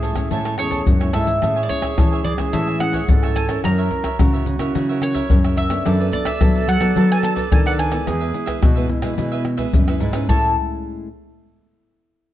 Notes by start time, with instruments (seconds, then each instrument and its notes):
Already playing: nylon-string guitar A2 E3 G#3 C#4 E4, flute G#4, mandolin E5
0.02 cavaquinho A4 C#5 E5 G#5, pandeiro, maracas
0.15 nylon-string guitar A2 G#3 C#4 E4, cavaquinho C#5 E5 G#5, pandeiro, tamborim, maracas, surdo
0.31 nylon-string guitar A2, cavaquinho A4 C#5 E5 G#5, flute A4, pandeiro, maracas, surdo
0.45 cavaquinho A4 C#5 E5 G#5, pandeiro, tamborim, maracas
0.58 nylon-string guitar E2 G#3 C#4 E4, flute G#4, cavaquinho A4 C#5 E5 G#5, mandolin C#5, pandeiro, tamborim
0.70 cavaquinho A4 C#5 E5 G#5, pandeiro, maracas, surdo
0.86 nylon-string guitar F#2 E3, flute F#4, pandeiro, maracas, surdo
1.00 nylon-string guitar G#3 C#4 E4, cavaquinho C#5 E5 G#5, pandeiro, tamborim, maracas
1.13 nylon-string guitar G#2 G#3 C#4 E4, flute E4, cavaquinho A4 C#5 E5 G#5, mandolin E5, pandeiro, tamborim
1.26 cavaquinho C#5 G#5, pandeiro, maracas, surdo
1.42 nylon-string guitar A2 G#3 C#4 E4, flute G#4, cavaquinho A4 C#5 E5 G#5, pandeiro, tamborim, maracas, surdo
1.56 cavaquinho C#5 E5 G#5, pandeiro, maracas
1.63 mandolin D5
1.69 nylon-string guitar G#3 C#4 E4, mandolin C#5, pandeiro, maracas, surdo
1.82 cavaquinho C#5 E5 G#5, pandeiro, tamborim, maracas, surdo
1.97 nylon-string guitar E3 G#3 C#4 E4, cavaquinho A4 C#5 E5 G#5, pandeiro, tamborim, maracas, surdo
2.12 cavaquinho C#5 E5 G#5, pandeiro, maracas
2.24 nylon-string guitar E3, mandolin D5, muted cavaquinho stroke, pandeiro, maracas
2.38 nylon-string guitar E3 G#3 C#4 E4, cavaquinho C#5 E5 G#5, pandeiro, tamborim, maracas, surdo
2.53 nylon-string guitar A2 E3, cavaquinho A4 C#5 E5 G#5, mandolin E5, pandeiro, maracas, surdo
2.67 cavaquinho C#5 E5 G#5, pandeiro, maracas
2.80 nylon-string guitar G#3 C#4 E4, mandolin F#5, muted cavaquinho stroke, pandeiro, tamborim
2.93 cavaquinho C#5 E5 G#5, pandeiro, maracas, surdo
3.08 nylon-string guitar G#2 E3 C#4 E4, flute A4, pandeiro, maracas, surdo
3.22 cavaquinho C#5 E5 G#5, pandeiro, tamborim, maracas
3.35 cavaquinho A4 C#5 E5 G#5, mandolin G#5, pandeiro, maracas
3.48 nylon-string guitar C#4 E4 A#4, cavaquinho C#5 E5 G#5, pandeiro, tamborim, maracas, surdo
3.64 nylon-string guitar F#2 F#3, cavaquinho F#4 A#4 C#5 E5, flute A#4, mandolin A#5, pandeiro, tamborim, maracas, surdo
3.78 cavaquinho A#4 C#5 E5, pandeiro, maracas
3.91 nylon-string guitar C#4 E4 A#4, pandeiro, surdo
4.04 cavaquinho A#4 C#5 E5, pandeiro, tamborim, maracas, surdo
4.19 nylon-string guitar C#3 C#4 E4 A#4, cavaquinho F#4 A#4 C#5 E5, flute F#4, pandeiro, tamborim, maracas, surdo
4.34 cavaquinho A#4 C#5 E5, pandeiro, maracas
4.46 nylon-string guitar C#3, muted cavaquinho stroke, pandeiro, maracas
4.59 nylon-string guitar C#3 C#4 E4 A#4, cavaquinho A#4 C#5 E5, pandeiro, tamborim, maracas, surdo
4.75 nylon-string guitar C#3 F#3, cavaquinho F#4 A#4 C#5 E5, pandeiro, maracas, surdo
4.89 cavaquinho A#4 C#5 E5, pandeiro, maracas
5.01 nylon-string guitar C#4 E4 A#4, mandolin C#5, pandeiro, tamborim, maracas
5.14 cavaquinho A#4 C#5 E5, pandeiro, maracas, surdo
5.30 nylon-string guitar F#2 C#3 C#4 E4 A#4, pandeiro, maracas, surdo
5.44 cavaquinho A#4 C#5 E5, pandeiro, tamborim, maracas
5.57 cavaquinho F#4 A#4 C#5 E5, mandolin E5, pandeiro, maracas
5.70 nylon-string guitar B3 D4 A4, cavaquinho A#4 C#5 E5, pandeiro, tamborim, maracas, surdo
5.85 nylon-string guitar F#2 F#3, cavaquinho D4 A4 B4 D5, flute A4, pandeiro, tamborim, maracas, surdo
6.00 cavaquinho A4 B4 D5, pandeiro, maracas
6.12 nylon-string guitar B3 D4 A4, mandolin D5, pandeiro, maracas, surdo
6.25 cavaquinho A4 B4 D5, mandolin E5, pandeiro, tamborim, maracas, surdo
6.41 nylon-string guitar F#3 B3 D4 A4, cavaquinho D4 A4 B4 D5, pandeiro, tamborim, maracas, surdo
6.55 cavaquinho A4 B4 D5, pandeiro, maracas
6.68 nylon-string guitar F#3, mandolin F#5, muted cavaquinho stroke, pandeiro, maracas
6.80 nylon-string guitar F#3 B3 D4 A4, cavaquinho A4 B4 D5, pandeiro, tamborim, maracas, surdo
6.96 nylon-string guitar F#3, cavaquinho D4 A4 B4 D5, pandeiro, maracas, surdo
7.10 cavaquinho A4 B4 D5, mandolin G#5, pandeiro, maracas
7.23 nylon-string guitar B3 D4 A4, mandolin A5, muted cavaquinho stroke, pandeiro, tamborim
7.35 cavaquinho A4 B4 D5, pandeiro, maracas, surdo
7.51 nylon-string guitar D#3 F#3 B3 D4 A4, mandolin G#5, pandeiro, maracas, surdo
7.66 cavaquinho A4 B4 D5, mandolin F#5, pandeiro, tamborim, maracas
7.78 cavaquinho D4 A4 B4 D5, mandolin G#5, pandeiro
7.91 nylon-string guitar G#3 B3 E4, cavaquinho A4 B4 D5, pandeiro, tamborim, maracas, surdo
8.06 nylon-string guitar E2 E3, cavaquinho E4 G#4 B4 E5, flute G#4, pandeiro, tamborim, maracas, surdo
8.20 cavaquinho G#4 B4 E5, pandeiro, maracas
8.34 nylon-string guitar G#3 B3 E4, pandeiro, maracas
8.46 cavaquinho G#4 B4 E5, pandeiro, tamborim, maracas, surdo
8.61 nylon-string guitar B2, cavaquinho E4 G#4 B4 E5, flute F#4, pandeiro, tamborim, maracas, surdo
8.76 nylon-string guitar G#3 B3 E4, cavaquinho G#4 B4 E5, pandeiro, maracas
8.89 nylon-string guitar B2, flute E4, muted cavaquinho stroke, pandeiro
9.02 nylon-string guitar B2 G#3 B3 E4, cavaquinho G#4 B4 E5, pandeiro, tamborim, maracas, surdo
9.17 nylon-string guitar B2 E3 G#3 B3 E4, cavaquinho E4 G#4 B4 E5, pandeiro, maracas, surdo
9.32 cavaquinho G#4 B4 E5, pandeiro, maracas
9.45 muted cavaquinho stroke, pandeiro, tamborim
9.57 nylon-string guitar G#3 B3 E4, cavaquinho G#4 B4 E5, pandeiro, maracas, surdo
9.73 nylon-string guitar F#2 B2, pandeiro, maracas, surdo
9.87 nylon-string guitar G#3 B3 E4, cavaquinho G#4 B4 E5, pandeiro, tamborim, maracas
10.00 nylon-string guitar G#2, cavaquinho E4 G#4 B4 E5, pandeiro, maracas
10.13 nylon-string guitar G#3 C#4 E4, cavaquinho G#4 B4 E5, pandeiro, tamborim, maracas, surdo
10.28 nylon-string guitar A2 G#3 C#4 E4, flute E4, cavaquinho A4 C#5 E5 G#5, mandolin A5, surdo